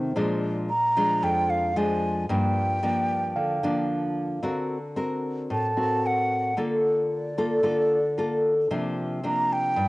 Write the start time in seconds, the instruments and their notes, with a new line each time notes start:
Already playing: nylon-string guitar C3 D#3 A3 C4, tine electric piano C5
0.16 nylon-string guitar A#2 F3 G#3 D4
0.69 flute A#5
0.97 nylon-string guitar F3 G#3 D4
1.22 nylon-string guitar F2, flute G5
1.50 flute F5
1.76 nylon-string guitar F3 G#3 D4, flute G#5
2.29 nylon-string guitar G2 F3 A#3 D4, flute G5
2.83 nylon-string guitar F3 A#3 D4
3.36 nylon-string guitar D3, tine electric piano F5
3.63 nylon-string guitar F3 A#3 D4
4.43 nylon-string guitar D3 C4 F#4 A#4
4.96 nylon-string guitar C4 F#4 A#4
5.50 nylon-string guitar A2, flute A5
5.77 nylon-string guitar C4 F#4 A#4
6.06 flute F#5
6.57 nylon-string guitar D3 A#3 F4 A4
7.12 flute D5
7.38 nylon-string guitar A#3 F4 A4
7.63 nylon-string guitar D3 A#3 F4 A4
8.18 nylon-string guitar A#3 F4 A4
8.71 nylon-string guitar C3 F3 A#3 D4
9.24 nylon-string guitar F3 A#3 D4, flute A#5
9.53 flute G5
9.76 nylon-string guitar G2